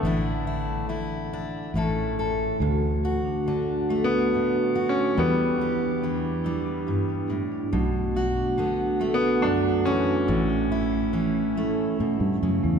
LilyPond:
<<
  \new Staff \with { instrumentName = "Vibraphone" } { \time 3/4 \key a \mixolydian \tempo 4 = 70 r2. | <a fis'>16 a16 fis'16 d'16 a16 d'16 <a fis'>16 a16 fis'16 d'16 a16 d'16 | <e' g'>16 b16 g'16 d'16 b16 d'16 <e' g'>16 b16 g'16 d'16 b16 d'16 | <a fis'>16 a16 fis'16 d'16 a16 d'16 <a fis'>16 a16 fis'16 d'16 a16 d'16 |
<cis' e'>16 e'16 cis'16 a16 e'16 a16 <cis' e'>16 e'16 cis'16 a16 e'16 a16 | }
  \new Staff \with { instrumentName = "Grand piano" } { \time 3/4 \key a \mixolydian <d a>4 r2 | r4 \tuplet 3/2 { r4 b8~ b4 cis'8 } | <g b>2~ <g b>8 r8 | r4 \tuplet 3/2 { r4 b8 } d'8 <e cis'>8~ |
<e cis'>2 r4 | }
  \new Staff \with { instrumentName = "Steel-string acoustic guitar" } { \time 3/4 \key a \mixolydian << { <d d' e'>8 e'8 e'8 d'8 <cis' e' a'>8 a'8 | r8 fis'8 d'8 a4 fis'8 | r8 g'8 d'8 g4. | r8 fis'8 b8 a4 fis'8 |
r8 e'8 cis'8 a4. | } \\ { a,4 d4 a,4 | d,4 d4 a,4 | e,4 e4 g,8 a,8 | b,4 d4 fis,4 |
a,4 e4 b,8 cis8 | } >> }
  \new Staff \with { instrumentName = "Fingered electric bass" } { \clef bass \time 3/4 \key a \mixolydian a,,2 a,,4 | d,2 r4 | e,2 r4 | b,,2 r4 |
a,,2 a,16 g,16 fis,16 e,16 | }
>>